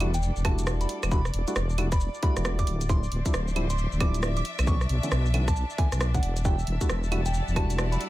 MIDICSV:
0, 0, Header, 1, 7, 480
1, 0, Start_track
1, 0, Key_signature, 1, "minor"
1, 0, Tempo, 444444
1, 1206, Time_signature, 4, 2, 24, 8
1, 8738, End_track
2, 0, Start_track
2, 0, Title_t, "Synth bell"
2, 0, Program_c, 0, 98
2, 154, Note_on_c, 0, 79, 92
2, 303, Note_off_c, 0, 79, 0
2, 483, Note_on_c, 0, 81, 100
2, 670, Note_off_c, 0, 81, 0
2, 875, Note_on_c, 0, 83, 93
2, 1024, Note_off_c, 0, 83, 0
2, 1203, Note_on_c, 0, 83, 104
2, 1343, Note_off_c, 0, 83, 0
2, 2076, Note_on_c, 0, 83, 91
2, 2224, Note_off_c, 0, 83, 0
2, 2406, Note_on_c, 0, 83, 100
2, 2591, Note_off_c, 0, 83, 0
2, 2796, Note_on_c, 0, 86, 93
2, 2944, Note_off_c, 0, 86, 0
2, 3125, Note_on_c, 0, 84, 107
2, 3264, Note_off_c, 0, 84, 0
2, 3996, Note_on_c, 0, 84, 91
2, 4144, Note_off_c, 0, 84, 0
2, 4327, Note_on_c, 0, 86, 93
2, 4511, Note_off_c, 0, 86, 0
2, 4718, Note_on_c, 0, 86, 90
2, 4865, Note_off_c, 0, 86, 0
2, 5047, Note_on_c, 0, 85, 101
2, 5185, Note_off_c, 0, 85, 0
2, 5917, Note_on_c, 0, 81, 92
2, 6064, Note_off_c, 0, 81, 0
2, 6248, Note_on_c, 0, 80, 100
2, 6432, Note_off_c, 0, 80, 0
2, 6639, Note_on_c, 0, 78, 92
2, 6785, Note_off_c, 0, 78, 0
2, 6969, Note_on_c, 0, 79, 96
2, 7106, Note_off_c, 0, 79, 0
2, 7838, Note_on_c, 0, 79, 96
2, 7985, Note_off_c, 0, 79, 0
2, 8166, Note_on_c, 0, 81, 96
2, 8351, Note_off_c, 0, 81, 0
2, 8554, Note_on_c, 0, 83, 89
2, 8703, Note_off_c, 0, 83, 0
2, 8738, End_track
3, 0, Start_track
3, 0, Title_t, "Analog synth pad"
3, 0, Program_c, 1, 89
3, 0, Note_on_c, 1, 74, 84
3, 0, Note_on_c, 1, 86, 84
3, 6965, Note_on_c, 1, 76, 86
3, 6965, Note_on_c, 1, 88, 84
3, 6977, Note_off_c, 1, 74, 0
3, 6978, Note_off_c, 1, 86, 0
3, 8738, Note_off_c, 1, 76, 0
3, 8738, Note_off_c, 1, 88, 0
3, 8738, End_track
4, 0, Start_track
4, 0, Title_t, "String section"
4, 0, Program_c, 2, 48
4, 0, Note_on_c, 2, 62, 93
4, 0, Note_on_c, 2, 69, 73
4, 0, Note_on_c, 2, 71, 77
4, 722, Note_off_c, 2, 71, 0
4, 3127, Note_on_c, 2, 53, 87
4, 3233, Note_on_c, 2, 72, 82
4, 3419, Note_on_c, 2, 76, 95
4, 3807, Note_off_c, 2, 69, 0
4, 3809, Note_off_c, 2, 62, 0
4, 4804, Note_off_c, 2, 72, 0
4, 4807, Note_off_c, 2, 53, 0
4, 4808, Note_on_c, 2, 62, 83
4, 5100, Note_on_c, 2, 81, 86
4, 6968, Note_on_c, 2, 55, 90
4, 7160, Note_on_c, 2, 74, 96
4, 7517, Note_on_c, 2, 78, 74
4, 8102, Note_off_c, 2, 76, 0
4, 8357, Note_off_c, 2, 62, 0
4, 8738, Note_off_c, 2, 55, 0
4, 8738, Note_off_c, 2, 74, 0
4, 8738, Note_off_c, 2, 78, 0
4, 8738, Note_off_c, 2, 81, 0
4, 8738, End_track
5, 0, Start_track
5, 0, Title_t, "Synth stab"
5, 0, Program_c, 3, 62
5, 5, Note_on_c, 3, 55, 83
5, 5, Note_on_c, 3, 57, 74
5, 5, Note_on_c, 3, 66, 90
5, 6, Note_on_c, 3, 62, 75
5, 6, Note_on_c, 3, 64, 77
5, 114, Note_off_c, 3, 55, 0
5, 114, Note_off_c, 3, 57, 0
5, 114, Note_off_c, 3, 62, 0
5, 114, Note_off_c, 3, 64, 0
5, 114, Note_off_c, 3, 66, 0
5, 485, Note_on_c, 3, 55, 97
5, 485, Note_on_c, 3, 57, 89
5, 485, Note_on_c, 3, 62, 85
5, 485, Note_on_c, 3, 64, 91
5, 485, Note_on_c, 3, 66, 100
5, 1184, Note_off_c, 3, 55, 0
5, 1184, Note_off_c, 3, 57, 0
5, 1184, Note_off_c, 3, 62, 0
5, 1184, Note_off_c, 3, 64, 0
5, 1184, Note_off_c, 3, 66, 0
5, 1205, Note_on_c, 3, 55, 91
5, 1205, Note_on_c, 3, 57, 78
5, 1205, Note_on_c, 3, 62, 77
5, 1205, Note_on_c, 3, 64, 77
5, 1205, Note_on_c, 3, 66, 96
5, 1314, Note_off_c, 3, 55, 0
5, 1314, Note_off_c, 3, 57, 0
5, 1314, Note_off_c, 3, 62, 0
5, 1314, Note_off_c, 3, 64, 0
5, 1314, Note_off_c, 3, 66, 0
5, 1595, Note_on_c, 3, 55, 84
5, 1595, Note_on_c, 3, 57, 77
5, 1595, Note_on_c, 3, 62, 76
5, 1595, Note_on_c, 3, 64, 74
5, 1595, Note_on_c, 3, 66, 94
5, 1708, Note_off_c, 3, 55, 0
5, 1708, Note_off_c, 3, 57, 0
5, 1708, Note_off_c, 3, 62, 0
5, 1708, Note_off_c, 3, 64, 0
5, 1708, Note_off_c, 3, 66, 0
5, 1924, Note_on_c, 3, 57, 74
5, 1924, Note_on_c, 3, 62, 77
5, 1924, Note_on_c, 3, 66, 89
5, 1925, Note_on_c, 3, 55, 80
5, 1925, Note_on_c, 3, 64, 72
5, 2033, Note_off_c, 3, 62, 0
5, 2034, Note_off_c, 3, 55, 0
5, 2034, Note_off_c, 3, 57, 0
5, 2034, Note_off_c, 3, 64, 0
5, 2034, Note_off_c, 3, 66, 0
5, 2402, Note_on_c, 3, 57, 89
5, 2402, Note_on_c, 3, 62, 87
5, 2403, Note_on_c, 3, 55, 99
5, 2403, Note_on_c, 3, 64, 88
5, 2403, Note_on_c, 3, 66, 108
5, 3103, Note_off_c, 3, 55, 0
5, 3103, Note_off_c, 3, 57, 0
5, 3103, Note_off_c, 3, 62, 0
5, 3103, Note_off_c, 3, 64, 0
5, 3103, Note_off_c, 3, 66, 0
5, 3125, Note_on_c, 3, 53, 85
5, 3125, Note_on_c, 3, 55, 79
5, 3125, Note_on_c, 3, 60, 79
5, 3125, Note_on_c, 3, 64, 98
5, 3126, Note_on_c, 3, 62, 79
5, 3234, Note_off_c, 3, 53, 0
5, 3234, Note_off_c, 3, 55, 0
5, 3234, Note_off_c, 3, 60, 0
5, 3234, Note_off_c, 3, 62, 0
5, 3234, Note_off_c, 3, 64, 0
5, 3515, Note_on_c, 3, 53, 85
5, 3515, Note_on_c, 3, 55, 77
5, 3515, Note_on_c, 3, 60, 79
5, 3515, Note_on_c, 3, 62, 74
5, 3515, Note_on_c, 3, 64, 94
5, 3628, Note_off_c, 3, 53, 0
5, 3628, Note_off_c, 3, 55, 0
5, 3628, Note_off_c, 3, 60, 0
5, 3628, Note_off_c, 3, 62, 0
5, 3629, Note_off_c, 3, 64, 0
5, 3845, Note_on_c, 3, 55, 80
5, 3845, Note_on_c, 3, 62, 74
5, 3845, Note_on_c, 3, 64, 94
5, 3846, Note_on_c, 3, 53, 78
5, 3846, Note_on_c, 3, 60, 74
5, 3954, Note_off_c, 3, 53, 0
5, 3954, Note_off_c, 3, 55, 0
5, 3954, Note_off_c, 3, 60, 0
5, 3954, Note_off_c, 3, 62, 0
5, 3954, Note_off_c, 3, 64, 0
5, 4326, Note_on_c, 3, 53, 100
5, 4326, Note_on_c, 3, 64, 105
5, 4327, Note_on_c, 3, 55, 88
5, 4327, Note_on_c, 3, 60, 88
5, 4327, Note_on_c, 3, 62, 89
5, 4795, Note_off_c, 3, 64, 0
5, 4796, Note_off_c, 3, 53, 0
5, 4796, Note_off_c, 3, 55, 0
5, 4796, Note_off_c, 3, 60, 0
5, 4796, Note_off_c, 3, 62, 0
5, 5046, Note_on_c, 3, 52, 79
5, 5047, Note_on_c, 3, 50, 92
5, 5047, Note_on_c, 3, 57, 77
5, 5047, Note_on_c, 3, 59, 79
5, 5047, Note_on_c, 3, 61, 95
5, 5155, Note_off_c, 3, 50, 0
5, 5155, Note_off_c, 3, 52, 0
5, 5155, Note_off_c, 3, 57, 0
5, 5155, Note_off_c, 3, 59, 0
5, 5155, Note_off_c, 3, 61, 0
5, 5436, Note_on_c, 3, 50, 83
5, 5436, Note_on_c, 3, 52, 78
5, 5436, Note_on_c, 3, 57, 73
5, 5436, Note_on_c, 3, 59, 75
5, 5436, Note_on_c, 3, 61, 94
5, 5549, Note_off_c, 3, 50, 0
5, 5549, Note_off_c, 3, 52, 0
5, 5549, Note_off_c, 3, 57, 0
5, 5549, Note_off_c, 3, 59, 0
5, 5549, Note_off_c, 3, 61, 0
5, 5766, Note_on_c, 3, 50, 83
5, 5766, Note_on_c, 3, 52, 76
5, 5766, Note_on_c, 3, 57, 75
5, 5766, Note_on_c, 3, 59, 77
5, 5767, Note_on_c, 3, 61, 92
5, 5874, Note_off_c, 3, 50, 0
5, 5874, Note_off_c, 3, 52, 0
5, 5874, Note_off_c, 3, 57, 0
5, 5874, Note_off_c, 3, 59, 0
5, 5875, Note_off_c, 3, 61, 0
5, 6245, Note_on_c, 3, 50, 78
5, 6245, Note_on_c, 3, 52, 73
5, 6245, Note_on_c, 3, 57, 70
5, 6245, Note_on_c, 3, 59, 68
5, 6245, Note_on_c, 3, 64, 88
5, 6354, Note_off_c, 3, 50, 0
5, 6354, Note_off_c, 3, 52, 0
5, 6354, Note_off_c, 3, 57, 0
5, 6354, Note_off_c, 3, 59, 0
5, 6354, Note_off_c, 3, 64, 0
5, 6636, Note_on_c, 3, 52, 89
5, 6637, Note_on_c, 3, 50, 87
5, 6637, Note_on_c, 3, 57, 84
5, 6637, Note_on_c, 3, 59, 88
5, 6637, Note_on_c, 3, 61, 99
5, 6701, Note_off_c, 3, 52, 0
5, 6701, Note_off_c, 3, 57, 0
5, 6701, Note_off_c, 3, 59, 0
5, 6701, Note_off_c, 3, 61, 0
5, 6702, Note_off_c, 3, 50, 0
5, 6964, Note_on_c, 3, 55, 85
5, 6964, Note_on_c, 3, 64, 79
5, 6965, Note_on_c, 3, 57, 77
5, 6965, Note_on_c, 3, 62, 81
5, 6965, Note_on_c, 3, 66, 98
5, 7073, Note_off_c, 3, 55, 0
5, 7074, Note_off_c, 3, 57, 0
5, 7074, Note_off_c, 3, 62, 0
5, 7074, Note_off_c, 3, 64, 0
5, 7074, Note_off_c, 3, 66, 0
5, 7354, Note_on_c, 3, 55, 87
5, 7354, Note_on_c, 3, 57, 77
5, 7354, Note_on_c, 3, 64, 75
5, 7354, Note_on_c, 3, 66, 92
5, 7355, Note_on_c, 3, 62, 77
5, 7468, Note_off_c, 3, 55, 0
5, 7468, Note_off_c, 3, 57, 0
5, 7468, Note_off_c, 3, 62, 0
5, 7468, Note_off_c, 3, 64, 0
5, 7468, Note_off_c, 3, 66, 0
5, 7684, Note_on_c, 3, 55, 81
5, 7684, Note_on_c, 3, 66, 96
5, 7685, Note_on_c, 3, 57, 74
5, 7685, Note_on_c, 3, 62, 74
5, 7686, Note_on_c, 3, 64, 73
5, 7794, Note_off_c, 3, 55, 0
5, 7794, Note_off_c, 3, 57, 0
5, 7794, Note_off_c, 3, 62, 0
5, 7794, Note_off_c, 3, 64, 0
5, 7794, Note_off_c, 3, 66, 0
5, 8166, Note_on_c, 3, 62, 88
5, 8167, Note_on_c, 3, 55, 97
5, 8167, Note_on_c, 3, 57, 89
5, 8167, Note_on_c, 3, 64, 88
5, 8167, Note_on_c, 3, 66, 106
5, 8738, Note_off_c, 3, 55, 0
5, 8738, Note_off_c, 3, 57, 0
5, 8738, Note_off_c, 3, 62, 0
5, 8738, Note_off_c, 3, 64, 0
5, 8738, Note_off_c, 3, 66, 0
5, 8738, End_track
6, 0, Start_track
6, 0, Title_t, "Wobble bass"
6, 0, Program_c, 4, 39
6, 0, Note_on_c, 4, 28, 93
6, 332, Note_off_c, 4, 28, 0
6, 394, Note_on_c, 4, 28, 114
6, 927, Note_off_c, 4, 28, 0
6, 1113, Note_on_c, 4, 28, 93
6, 1406, Note_off_c, 4, 28, 0
6, 1444, Note_on_c, 4, 28, 105
6, 1555, Note_off_c, 4, 28, 0
6, 1685, Note_on_c, 4, 28, 92
6, 2252, Note_off_c, 4, 28, 0
6, 2554, Note_on_c, 4, 28, 93
6, 2847, Note_off_c, 4, 28, 0
6, 2885, Note_on_c, 4, 26, 85
6, 3327, Note_off_c, 4, 26, 0
6, 3366, Note_on_c, 4, 26, 101
6, 3476, Note_off_c, 4, 26, 0
6, 3606, Note_on_c, 4, 26, 95
6, 4172, Note_off_c, 4, 26, 0
6, 4237, Note_on_c, 4, 26, 108
6, 4768, Note_off_c, 4, 26, 0
6, 4956, Note_on_c, 4, 35, 91
6, 5248, Note_off_c, 4, 35, 0
6, 5286, Note_on_c, 4, 35, 98
6, 5396, Note_off_c, 4, 35, 0
6, 5526, Note_on_c, 4, 35, 92
6, 6092, Note_off_c, 4, 35, 0
6, 6396, Note_on_c, 4, 35, 95
6, 6688, Note_off_c, 4, 35, 0
6, 6726, Note_on_c, 4, 28, 82
6, 7168, Note_off_c, 4, 28, 0
6, 7206, Note_on_c, 4, 28, 100
6, 7316, Note_off_c, 4, 28, 0
6, 7447, Note_on_c, 4, 28, 94
6, 8013, Note_off_c, 4, 28, 0
6, 8077, Note_on_c, 4, 28, 111
6, 8608, Note_off_c, 4, 28, 0
6, 8738, End_track
7, 0, Start_track
7, 0, Title_t, "Drums"
7, 4, Note_on_c, 9, 46, 109
7, 4, Note_on_c, 9, 75, 75
7, 112, Note_off_c, 9, 46, 0
7, 112, Note_off_c, 9, 75, 0
7, 153, Note_on_c, 9, 42, 65
7, 153, Note_on_c, 9, 82, 63
7, 243, Note_off_c, 9, 82, 0
7, 243, Note_on_c, 9, 82, 50
7, 261, Note_off_c, 9, 42, 0
7, 351, Note_off_c, 9, 82, 0
7, 393, Note_on_c, 9, 82, 31
7, 483, Note_on_c, 9, 37, 74
7, 483, Note_on_c, 9, 46, 115
7, 483, Note_on_c, 9, 75, 80
7, 485, Note_on_c, 9, 36, 108
7, 501, Note_off_c, 9, 82, 0
7, 591, Note_off_c, 9, 37, 0
7, 591, Note_off_c, 9, 46, 0
7, 591, Note_off_c, 9, 75, 0
7, 593, Note_off_c, 9, 36, 0
7, 633, Note_on_c, 9, 42, 65
7, 633, Note_on_c, 9, 82, 60
7, 722, Note_off_c, 9, 82, 0
7, 722, Note_on_c, 9, 37, 122
7, 722, Note_on_c, 9, 82, 51
7, 741, Note_off_c, 9, 42, 0
7, 830, Note_off_c, 9, 37, 0
7, 830, Note_off_c, 9, 82, 0
7, 872, Note_on_c, 9, 42, 55
7, 872, Note_on_c, 9, 82, 30
7, 962, Note_on_c, 9, 46, 114
7, 980, Note_off_c, 9, 42, 0
7, 980, Note_off_c, 9, 82, 0
7, 1070, Note_off_c, 9, 46, 0
7, 1113, Note_on_c, 9, 37, 73
7, 1113, Note_on_c, 9, 42, 68
7, 1113, Note_on_c, 9, 75, 76
7, 1113, Note_on_c, 9, 82, 60
7, 1203, Note_off_c, 9, 82, 0
7, 1203, Note_on_c, 9, 82, 51
7, 1204, Note_on_c, 9, 36, 120
7, 1221, Note_off_c, 9, 37, 0
7, 1221, Note_off_c, 9, 42, 0
7, 1221, Note_off_c, 9, 75, 0
7, 1311, Note_off_c, 9, 82, 0
7, 1312, Note_off_c, 9, 36, 0
7, 1353, Note_on_c, 9, 37, 61
7, 1353, Note_on_c, 9, 82, 33
7, 1443, Note_on_c, 9, 46, 106
7, 1461, Note_off_c, 9, 37, 0
7, 1461, Note_off_c, 9, 82, 0
7, 1551, Note_off_c, 9, 46, 0
7, 1594, Note_on_c, 9, 42, 62
7, 1594, Note_on_c, 9, 82, 63
7, 1684, Note_off_c, 9, 82, 0
7, 1684, Note_on_c, 9, 37, 125
7, 1684, Note_on_c, 9, 82, 52
7, 1702, Note_off_c, 9, 42, 0
7, 1792, Note_off_c, 9, 37, 0
7, 1792, Note_off_c, 9, 82, 0
7, 1834, Note_on_c, 9, 82, 32
7, 1923, Note_on_c, 9, 46, 113
7, 1923, Note_on_c, 9, 75, 80
7, 1942, Note_off_c, 9, 82, 0
7, 2031, Note_off_c, 9, 46, 0
7, 2031, Note_off_c, 9, 75, 0
7, 2073, Note_on_c, 9, 37, 60
7, 2073, Note_on_c, 9, 42, 66
7, 2073, Note_on_c, 9, 82, 65
7, 2076, Note_on_c, 9, 36, 112
7, 2163, Note_off_c, 9, 82, 0
7, 2163, Note_on_c, 9, 82, 51
7, 2181, Note_off_c, 9, 37, 0
7, 2181, Note_off_c, 9, 42, 0
7, 2184, Note_off_c, 9, 36, 0
7, 2271, Note_off_c, 9, 82, 0
7, 2315, Note_on_c, 9, 82, 30
7, 2404, Note_on_c, 9, 46, 110
7, 2406, Note_on_c, 9, 36, 119
7, 2423, Note_off_c, 9, 82, 0
7, 2512, Note_off_c, 9, 46, 0
7, 2514, Note_off_c, 9, 36, 0
7, 2555, Note_on_c, 9, 37, 71
7, 2555, Note_on_c, 9, 42, 63
7, 2555, Note_on_c, 9, 82, 60
7, 2645, Note_off_c, 9, 37, 0
7, 2645, Note_off_c, 9, 82, 0
7, 2645, Note_on_c, 9, 37, 120
7, 2645, Note_on_c, 9, 82, 53
7, 2663, Note_off_c, 9, 42, 0
7, 2753, Note_off_c, 9, 37, 0
7, 2753, Note_off_c, 9, 82, 0
7, 2796, Note_on_c, 9, 36, 70
7, 2796, Note_on_c, 9, 42, 52
7, 2796, Note_on_c, 9, 82, 30
7, 2884, Note_on_c, 9, 46, 112
7, 2904, Note_off_c, 9, 36, 0
7, 2904, Note_off_c, 9, 42, 0
7, 2904, Note_off_c, 9, 82, 0
7, 2992, Note_off_c, 9, 46, 0
7, 3036, Note_on_c, 9, 42, 64
7, 3036, Note_on_c, 9, 82, 61
7, 3126, Note_off_c, 9, 82, 0
7, 3126, Note_on_c, 9, 36, 126
7, 3126, Note_on_c, 9, 82, 53
7, 3144, Note_off_c, 9, 42, 0
7, 3234, Note_off_c, 9, 36, 0
7, 3234, Note_off_c, 9, 82, 0
7, 3276, Note_on_c, 9, 82, 32
7, 3366, Note_on_c, 9, 46, 100
7, 3384, Note_off_c, 9, 82, 0
7, 3474, Note_off_c, 9, 46, 0
7, 3516, Note_on_c, 9, 36, 63
7, 3516, Note_on_c, 9, 42, 65
7, 3516, Note_on_c, 9, 82, 61
7, 3606, Note_off_c, 9, 82, 0
7, 3606, Note_on_c, 9, 37, 125
7, 3606, Note_on_c, 9, 82, 54
7, 3624, Note_off_c, 9, 36, 0
7, 3624, Note_off_c, 9, 42, 0
7, 3714, Note_off_c, 9, 37, 0
7, 3714, Note_off_c, 9, 82, 0
7, 3756, Note_on_c, 9, 82, 34
7, 3845, Note_on_c, 9, 46, 105
7, 3845, Note_on_c, 9, 75, 82
7, 3864, Note_off_c, 9, 82, 0
7, 3953, Note_off_c, 9, 46, 0
7, 3953, Note_off_c, 9, 75, 0
7, 3996, Note_on_c, 9, 42, 66
7, 3996, Note_on_c, 9, 82, 64
7, 4084, Note_off_c, 9, 82, 0
7, 4084, Note_on_c, 9, 82, 52
7, 4104, Note_off_c, 9, 42, 0
7, 4192, Note_off_c, 9, 82, 0
7, 4234, Note_on_c, 9, 82, 30
7, 4325, Note_on_c, 9, 37, 70
7, 4325, Note_on_c, 9, 46, 109
7, 4325, Note_on_c, 9, 75, 84
7, 4326, Note_on_c, 9, 36, 115
7, 4342, Note_off_c, 9, 82, 0
7, 4433, Note_off_c, 9, 37, 0
7, 4433, Note_off_c, 9, 46, 0
7, 4433, Note_off_c, 9, 75, 0
7, 4434, Note_off_c, 9, 36, 0
7, 4476, Note_on_c, 9, 42, 60
7, 4476, Note_on_c, 9, 82, 58
7, 4566, Note_off_c, 9, 82, 0
7, 4566, Note_on_c, 9, 37, 122
7, 4566, Note_on_c, 9, 82, 51
7, 4584, Note_off_c, 9, 42, 0
7, 4674, Note_off_c, 9, 37, 0
7, 4674, Note_off_c, 9, 82, 0
7, 4716, Note_on_c, 9, 42, 53
7, 4716, Note_on_c, 9, 82, 32
7, 4806, Note_on_c, 9, 46, 106
7, 4824, Note_off_c, 9, 42, 0
7, 4824, Note_off_c, 9, 82, 0
7, 4914, Note_off_c, 9, 46, 0
7, 4955, Note_on_c, 9, 37, 70
7, 4955, Note_on_c, 9, 42, 68
7, 4955, Note_on_c, 9, 75, 82
7, 4955, Note_on_c, 9, 82, 61
7, 5046, Note_off_c, 9, 82, 0
7, 5046, Note_on_c, 9, 36, 121
7, 5046, Note_on_c, 9, 82, 53
7, 5063, Note_off_c, 9, 37, 0
7, 5063, Note_off_c, 9, 42, 0
7, 5063, Note_off_c, 9, 75, 0
7, 5154, Note_off_c, 9, 36, 0
7, 5154, Note_off_c, 9, 82, 0
7, 5196, Note_on_c, 9, 37, 60
7, 5196, Note_on_c, 9, 82, 35
7, 5285, Note_on_c, 9, 46, 100
7, 5304, Note_off_c, 9, 37, 0
7, 5304, Note_off_c, 9, 82, 0
7, 5393, Note_off_c, 9, 46, 0
7, 5436, Note_on_c, 9, 42, 68
7, 5436, Note_on_c, 9, 82, 65
7, 5526, Note_off_c, 9, 82, 0
7, 5526, Note_on_c, 9, 37, 127
7, 5526, Note_on_c, 9, 82, 51
7, 5544, Note_off_c, 9, 42, 0
7, 5634, Note_off_c, 9, 37, 0
7, 5634, Note_off_c, 9, 82, 0
7, 5677, Note_on_c, 9, 82, 34
7, 5767, Note_on_c, 9, 46, 108
7, 5767, Note_on_c, 9, 75, 85
7, 5785, Note_off_c, 9, 82, 0
7, 5875, Note_off_c, 9, 46, 0
7, 5875, Note_off_c, 9, 75, 0
7, 5917, Note_on_c, 9, 36, 104
7, 5917, Note_on_c, 9, 37, 58
7, 5917, Note_on_c, 9, 42, 67
7, 5917, Note_on_c, 9, 82, 66
7, 6006, Note_off_c, 9, 82, 0
7, 6006, Note_on_c, 9, 82, 55
7, 6025, Note_off_c, 9, 36, 0
7, 6025, Note_off_c, 9, 37, 0
7, 6025, Note_off_c, 9, 42, 0
7, 6114, Note_off_c, 9, 82, 0
7, 6157, Note_on_c, 9, 82, 33
7, 6246, Note_on_c, 9, 36, 120
7, 6246, Note_on_c, 9, 46, 106
7, 6265, Note_off_c, 9, 82, 0
7, 6354, Note_off_c, 9, 36, 0
7, 6354, Note_off_c, 9, 46, 0
7, 6396, Note_on_c, 9, 37, 65
7, 6396, Note_on_c, 9, 42, 64
7, 6396, Note_on_c, 9, 82, 64
7, 6486, Note_off_c, 9, 37, 0
7, 6486, Note_off_c, 9, 82, 0
7, 6486, Note_on_c, 9, 37, 125
7, 6486, Note_on_c, 9, 82, 54
7, 6504, Note_off_c, 9, 42, 0
7, 6594, Note_off_c, 9, 37, 0
7, 6594, Note_off_c, 9, 82, 0
7, 6636, Note_on_c, 9, 36, 66
7, 6637, Note_on_c, 9, 42, 52
7, 6637, Note_on_c, 9, 82, 34
7, 6726, Note_on_c, 9, 46, 100
7, 6744, Note_off_c, 9, 36, 0
7, 6745, Note_off_c, 9, 42, 0
7, 6745, Note_off_c, 9, 82, 0
7, 6834, Note_off_c, 9, 46, 0
7, 6875, Note_on_c, 9, 42, 68
7, 6875, Note_on_c, 9, 82, 63
7, 6965, Note_off_c, 9, 82, 0
7, 6965, Note_on_c, 9, 82, 54
7, 6966, Note_on_c, 9, 36, 120
7, 6983, Note_off_c, 9, 42, 0
7, 7073, Note_off_c, 9, 82, 0
7, 7074, Note_off_c, 9, 36, 0
7, 7115, Note_on_c, 9, 82, 36
7, 7204, Note_on_c, 9, 46, 101
7, 7223, Note_off_c, 9, 82, 0
7, 7312, Note_off_c, 9, 46, 0
7, 7356, Note_on_c, 9, 36, 61
7, 7356, Note_on_c, 9, 42, 68
7, 7356, Note_on_c, 9, 82, 68
7, 7446, Note_off_c, 9, 82, 0
7, 7446, Note_on_c, 9, 37, 113
7, 7446, Note_on_c, 9, 82, 56
7, 7464, Note_off_c, 9, 36, 0
7, 7464, Note_off_c, 9, 42, 0
7, 7554, Note_off_c, 9, 37, 0
7, 7554, Note_off_c, 9, 82, 0
7, 7597, Note_on_c, 9, 82, 35
7, 7687, Note_on_c, 9, 46, 102
7, 7687, Note_on_c, 9, 75, 89
7, 7705, Note_off_c, 9, 82, 0
7, 7795, Note_off_c, 9, 46, 0
7, 7795, Note_off_c, 9, 75, 0
7, 7838, Note_on_c, 9, 42, 68
7, 7838, Note_on_c, 9, 82, 67
7, 7928, Note_off_c, 9, 82, 0
7, 7928, Note_on_c, 9, 82, 58
7, 7946, Note_off_c, 9, 42, 0
7, 8036, Note_off_c, 9, 82, 0
7, 8079, Note_on_c, 9, 82, 34
7, 8167, Note_on_c, 9, 36, 114
7, 8168, Note_on_c, 9, 37, 68
7, 8168, Note_on_c, 9, 46, 102
7, 8168, Note_on_c, 9, 75, 86
7, 8187, Note_off_c, 9, 82, 0
7, 8275, Note_off_c, 9, 36, 0
7, 8276, Note_off_c, 9, 37, 0
7, 8276, Note_off_c, 9, 46, 0
7, 8276, Note_off_c, 9, 75, 0
7, 8318, Note_on_c, 9, 42, 66
7, 8318, Note_on_c, 9, 82, 63
7, 8407, Note_off_c, 9, 82, 0
7, 8407, Note_on_c, 9, 37, 120
7, 8407, Note_on_c, 9, 82, 54
7, 8426, Note_off_c, 9, 42, 0
7, 8515, Note_off_c, 9, 37, 0
7, 8515, Note_off_c, 9, 82, 0
7, 8559, Note_on_c, 9, 42, 55
7, 8559, Note_on_c, 9, 82, 36
7, 8647, Note_on_c, 9, 46, 102
7, 8667, Note_off_c, 9, 42, 0
7, 8667, Note_off_c, 9, 82, 0
7, 8738, Note_off_c, 9, 46, 0
7, 8738, End_track
0, 0, End_of_file